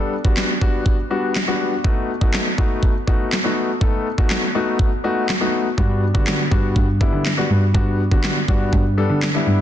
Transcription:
Already playing: grand piano G3 B3 D4 A4
0.24 grand piano G3 B3 D4 F#4, kick
0.37 snare, clap
0.61 grand piano G3 B3 D4 F#4, kick
0.86 kick
1.10 grand piano G3 B3 D4 F#4
1.35 snare, clap
1.47 grand piano G3 B3 D4 F#4
1.84 grand piano A3 B3 D#4 F#4, kick
2.21 grand piano A3 B3 D#4 F#4, kick
2.34 snare, clap
2.58 grand piano A3 B3 D#4 F#4, kick
2.83 kick
3.07 grand piano A3 B3 D#4 F#4, kick
3.32 snare, clap
3.44 grand piano A3 B3 D#4 F#4
3.81 grand piano A3 B3 D#4 A4, kick
4.18 grand piano A3 B3 D#4 F#4, kick
4.30 snare, clap
4.55 grand piano A3 B3 D#4 F#4
4.79 kick
5.04 grand piano A3 B3 D#4 F#4
5.29 snare, clap
5.41 grand piano A3 B3 D#4 F#4
5.77 cello G2, grand piano G3 B3 D4 F#4, kick
6.14 cello D3, grand piano G3 B3 D4 F#4, kick
6.27 snare, clap
6.51 cello G2, grand piano G3 B3 D4 F#4, kick
6.76 cello G2, kick
7.01 grand piano G3 B3 D4 E4, kick
7.13 cello D3
7.25 snare, clap
7.37 grand piano G3 B3 D4 F#4
7.50 cello G2
7.74 cello G2, grand piano G3 B3 D4 F#4, kick
8.11 cello D3, grand piano G3 B3 D4 F#4, kick
8.24 snare, clap
8.48 cello G2, grand piano G3 B3 D4 F#4, kick
8.73 cello G2, kick
8.97 grand piano G3 B3 D4 A4
9.10 cello D3
9.22 snare, clap
9.34 grand piano G3 B3 D4 E4
9.47 cello G2

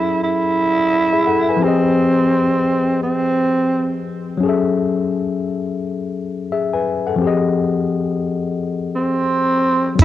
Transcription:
Already playing: tine electric piano F#3 C#4 G#4 A4 E5, tenor saxophone E4
0.23 tenor saxophone E4
1.13 tine electric piano G#4 E5
1.27 tine electric piano A4 F#5
1.49 tine electric piano B4 G#5
1.57 tine electric piano F3 C4
1.62 tenor saxophone C4, tine electric piano G4 G#4
1.68 tine electric piano D#5
3.03 tenor saxophone C4
4.37 tine electric piano F#3 C#4
4.43 tine electric piano G#4 A4
4.49 tine electric piano E5
6.52 tine electric piano G#4 E5
6.73 tine electric piano B4 G#5
7.07 tine electric piano A4 F#5
7.16 tine electric piano F3 C4
7.22 tine electric piano G4 G#4
7.27 tine electric piano D#5
8.96 tenor saxophone C4
9.95 tine electric piano F#3 C#4
9.99 analog synth bass F#1, tine electric piano E4, kick, closed hi-hat, shaker

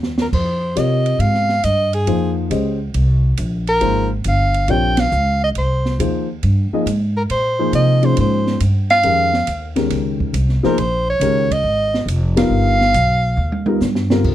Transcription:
Already playing: upright bass D#2
0.03 snare
0.18 snare
0.22 soprano saxophone A#4
0.33 upright bass F2, soprano saxophone C5, kick, crash
0.75 upright piano C3 G3 F4 A#4 C#5, upright bass C3, soprano saxophone D#5, hi-hat pedal, ride
1.06 ride
1.19 upright bass G#2, soprano saxophone F5, ride
1.34 snare
1.49 snare
1.64 upright bass G2, soprano saxophone D#5, hi-hat pedal, ride
1.93 soprano saxophone G#4, ride
2.07 upright bass F2, upright piano F3 A#3 D#4 G#4 C5, ride
2.50 upright bass C#2, upright piano G#3 C#4 G4 C5 D#5, hi-hat pedal, ride
2.94 upright bass C2, ride
3.37 upright bass A#1, hi-hat pedal, ride
3.67 soprano saxophone A#4, ride
3.81 upright bass G#1, upright piano F3 A#3 D#4 G#4 C5, ride
4.24 upright bass G1, hi-hat pedal, ride
4.29 soprano saxophone F5
4.54 ride
4.68 upright bass A#1, upright piano G3 C4 F4 A#4 C#5, soprano saxophone G5, ride
4.97 soprano saxophone F5, snare, ride
5.12 upright bass C#2, hi-hat pedal
5.44 soprano saxophone D#5
5.55 upright bass C2, soprano saxophone C5, ride
5.85 snare
5.98 upright bass D#2, upright piano F3 A#3 D#4 G#4 C5, hi-hat pedal, ride
6.43 upright bass G2, ride
6.72 upright piano F3 A#3 D#4 G#4 D#5, muted upright bass stroke
6.86 upright bass G#2, hi-hat pedal, ride
7.17 soprano saxophone A#4
7.30 upright bass A#2, soprano saxophone C5, ride
7.59 upright piano F3 A#3 D#4 G#4 C5
7.73 upright bass C3, soprano saxophone D#5, hi-hat pedal, ride
8.02 upright piano F3 A#3 C#4 D#4 G#4, soprano saxophone C5, ride
8.17 upright bass G#2, soprano saxophone C5, ride
8.47 snare
8.60 upright bass G2, hi-hat pedal, ride
8.90 soprano saxophone F5, snare, ride
9.03 upright bass F2, upright piano D#3 G#3 C#4 G4 A#4, ride
9.34 snare
9.47 upright bass D#2, hi-hat pedal, ride
9.76 upright piano D#3 G#3 C#4 G4 A#4, snare, ride
9.90 upright bass C#2, snare, ride
10.20 kick
10.33 upright bass C2, hi-hat pedal, ride
10.49 snare
10.63 upright piano F3 A#3 D#4 G#4 C5, soprano saxophone A#4, muted upright bass stroke, snare
10.78 upright bass A#1, soprano saxophone C5, ride
11.10 soprano saxophone C#5
11.20 upright bass C#2, upright piano D#3 G#3 C#4 G4 A#4, hi-hat pedal, ride
11.51 soprano saxophone D#5, kick, ride
11.63 upright bass G#1
11.94 snare
12.06 upright bass F1, hi-hat pedal, ride
12.36 upright piano G3 B3 D#4 F4 A#4, soprano saxophone F5, snare, ride
12.49 upright bass G1
12.81 snare
12.94 upright bass B1, hi-hat pedal, ride
13.37 upright bass D#2
13.52 high tom
13.66 upright piano G3 B3 D#4 F4 A#4, high tom
13.80 upright bass G2, snare, hi-hat pedal
13.95 snare
14.10 upright piano D3 G3 C4 F4 A#4, snare
14.24 upright bass C2, kick, crash

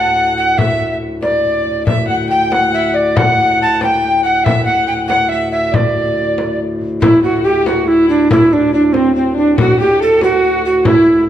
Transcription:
Already playing: harmonium D2 A2, recorder F#5, fiddle F#5
0.37 recorder F#5
0.58 fiddle E5, recorder E5, frame drum
1.22 fiddle D5, recorder D5, frame drum
1.44 frame drum
1.66 frame drum
1.86 harmonium D2 A2, fiddle E5, recorder E5, frame drum
2.08 fiddle F#5, recorder F#5
2.30 fiddle G5, recorder G5
2.52 recorder F#5, fiddle F#5, frame drum
2.74 recorder E5
2.94 fiddle D5, recorder D5
3.17 fiddle F#5, recorder F#5, frame drum
3.62 recorder A5
3.81 fiddle G5, recorder G5, frame drum
4.23 fiddle F#5, recorder F#5
4.44 recorder E5, fiddle E5, frame drum
4.65 recorder F#5, fiddle F#5
4.87 recorder G5
5.08 recorder F#5, fiddle F#5, frame drum
5.29 recorder E5, fiddle E5
5.51 recorder E5, fiddle E5
5.72 fiddle D5, recorder D5, frame drum
6.38 frame drum
6.81 frame drum
7.01 harmonium D2 A2, recorder E4, fiddle E4, frame drum
7.23 recorder F#4, fiddle F#4
7.44 recorder G4, fiddle G4
7.66 fiddle F#4, recorder F#4, frame drum
7.88 recorder E4, fiddle E4
8.09 recorder D4
8.31 recorder E4, fiddle E4, frame drum
8.52 fiddle D4, recorder D4
8.73 fiddle D4, recorder D4
8.93 recorder C4, fiddle C4, frame drum
9.15 fiddle C4, recorder C4
9.36 fiddle D4, recorder D4
9.57 fiddle F#4, recorder F#4, frame drum
9.80 recorder G4, fiddle G4
10.00 fiddle A4, recorder A4
10.20 fiddle F#4, recorder F#4, frame drum
10.65 recorder F#4
10.85 fiddle E4, recorder E4, frame drum

